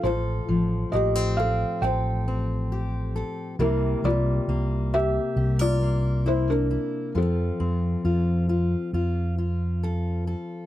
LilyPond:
<<
  \new Staff \with { instrumentName = "Felt piano" } { \time 4/4 \key f \mixolydian \tempo 4 = 68 <f' c''>4 <g' ees''>8 <a' f''>8 <c'' g''>4. r8 | <e' bes'>8 <f' d''>4 <g' e''>8. <f' d''>8. <e' c''>16 <d' bes'>8. | <c' a'>2. r4 | }
  \new Staff \with { instrumentName = "Steel-string acoustic guitar" } { \time 4/4 \key f \mixolydian << { a'4 bes16 c'16 g'8 a'8 c'8 g'8 a'8 | <g bes>4 bes4 g'16 bes'16 bes8 e'8 e'8 | f'4 f'8 f'8 f'8 f'8 a'8 a'8 | } \\ { <a, f>8 f2.~ f8 | c8 g2.~ g8 | f8 c'2.~ c'8 | } >> }
  \new Staff \with { instrumentName = "Fretless electric bass" } { \clef bass \time 4/4 \key f \mixolydian a,,8 a,,8 a,,4 a,,2 | c,8 c,8 c,4 c,2 | f,8 f,8 f,4 f,2 | }
>>